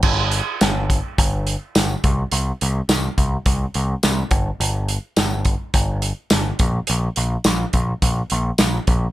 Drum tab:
CC |x-------|--------|--------|--------|
HH |-xxxxxxx|xxxxxxxx|xxxxxxxx|xxxxxxxx|
TB |--x---x-|--x---x-|--x---x-|--x---x-|
SD |--o---o-|--o---o-|--o---o-|--o---o-|
BD |o--oo--o|---oo--o|---oo--o|---oo--o|